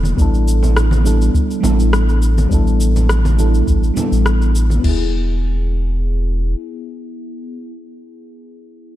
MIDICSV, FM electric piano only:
0, 0, Header, 1, 2, 480
1, 0, Start_track
1, 0, Tempo, 582524
1, 147, Time_signature, 4, 2, 24, 8
1, 7384, End_track
2, 0, Start_track
2, 0, Title_t, "FM electric piano"
2, 0, Program_c, 0, 5
2, 0, Control_c, 0, 64, 127
2, 0, Note_on_c, 0, 54, 72
2, 0, Note_on_c, 0, 59, 68
2, 0, Note_on_c, 0, 62, 69
2, 0, Note_on_c, 0, 64, 68
2, 0, Note_on_c, 0, 69, 83
2, 108, Note_off_c, 0, 54, 0
2, 113, Note_off_c, 0, 59, 0
2, 121, Note_off_c, 0, 62, 0
2, 126, Note_off_c, 0, 64, 0
2, 127, Note_on_c, 0, 55, 78
2, 133, Note_off_c, 0, 69, 0
2, 138, Note_on_c, 0, 59, 77
2, 152, Note_on_c, 0, 62, 77
2, 156, Control_c, 0, 64, 0
2, 163, Note_on_c, 0, 64, 75
2, 178, Note_on_c, 0, 69, 93
2, 294, Control_c, 0, 64, 127
2, 830, Note_off_c, 0, 55, 0
2, 835, Note_off_c, 0, 59, 0
2, 842, Note_off_c, 0, 62, 0
2, 848, Note_off_c, 0, 64, 0
2, 853, Note_on_c, 0, 55, 69
2, 856, Note_off_c, 0, 69, 0
2, 859, Note_on_c, 0, 59, 64
2, 863, Note_on_c, 0, 62, 63
2, 872, Note_on_c, 0, 64, 61
2, 879, Note_on_c, 0, 69, 81
2, 1313, Note_off_c, 0, 55, 0
2, 1316, Note_off_c, 0, 59, 0
2, 1318, Note_off_c, 0, 62, 0
2, 1322, Note_on_c, 0, 55, 77
2, 1323, Note_off_c, 0, 64, 0
2, 1326, Note_off_c, 0, 69, 0
2, 1335, Note_on_c, 0, 59, 66
2, 1347, Note_on_c, 0, 62, 67
2, 1362, Note_on_c, 0, 64, 68
2, 1372, Note_on_c, 0, 69, 86
2, 2027, Note_off_c, 0, 55, 0
2, 2034, Note_off_c, 0, 59, 0
2, 2040, Note_off_c, 0, 62, 0
2, 2046, Note_on_c, 0, 55, 82
2, 2047, Note_off_c, 0, 64, 0
2, 2052, Note_off_c, 0, 69, 0
2, 2057, Note_on_c, 0, 59, 76
2, 2070, Note_on_c, 0, 62, 74
2, 2083, Note_on_c, 0, 64, 73
2, 2094, Note_on_c, 0, 69, 91
2, 2749, Note_off_c, 0, 55, 0
2, 2755, Note_off_c, 0, 59, 0
2, 2761, Note_off_c, 0, 62, 0
2, 2768, Note_off_c, 0, 64, 0
2, 2773, Note_off_c, 0, 69, 0
2, 2773, Note_on_c, 0, 55, 69
2, 2780, Note_on_c, 0, 59, 60
2, 2787, Note_on_c, 0, 62, 60
2, 2795, Note_on_c, 0, 64, 64
2, 2799, Note_on_c, 0, 69, 75
2, 3233, Note_off_c, 0, 55, 0
2, 3237, Note_off_c, 0, 59, 0
2, 3240, Note_off_c, 0, 62, 0
2, 3244, Note_off_c, 0, 64, 0
2, 3244, Note_on_c, 0, 55, 71
2, 3246, Note_off_c, 0, 69, 0
2, 3257, Note_on_c, 0, 59, 64
2, 3269, Note_on_c, 0, 62, 62
2, 3281, Note_on_c, 0, 64, 65
2, 3294, Note_on_c, 0, 69, 81
2, 3939, Note_off_c, 0, 59, 0
2, 3948, Note_off_c, 0, 55, 0
2, 3948, Note_on_c, 0, 59, 71
2, 3961, Note_off_c, 0, 62, 0
2, 3967, Note_off_c, 0, 64, 0
2, 3973, Note_off_c, 0, 69, 0
2, 3987, Note_on_c, 0, 64, 67
2, 3999, Control_c, 0, 64, 0
2, 4026, Note_on_c, 0, 68, 80
2, 4138, Control_c, 0, 64, 127
2, 6682, Note_off_c, 0, 59, 0
2, 6720, Note_off_c, 0, 64, 0
2, 6760, Note_off_c, 0, 68, 0
2, 7384, End_track
0, 0, End_of_file